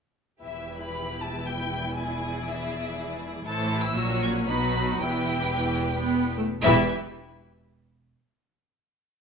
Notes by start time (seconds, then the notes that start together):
0.43 E1 E2 E3 E4 G4 B4 E5
0.84 B5
1.23 A5
1.48 G5
1.97 G#4 D5 G#5
2.49 E5
3.46 A1 A2 E3 E4 A4 C5 A5
3.73 G4
3.84 E6
3.96 A#1 A#2 F#3 C#4 F#4 C#5
4.23 C#6
4.47 B1 B2 F#3 D#4 F#4 B4 B5
5.01 E1 E2 E3 E4 G4 B4 G5
5.56 E3
5.96 B3
6.38 A3
6.63 E1 E2 E3 E4 G4 B4 E5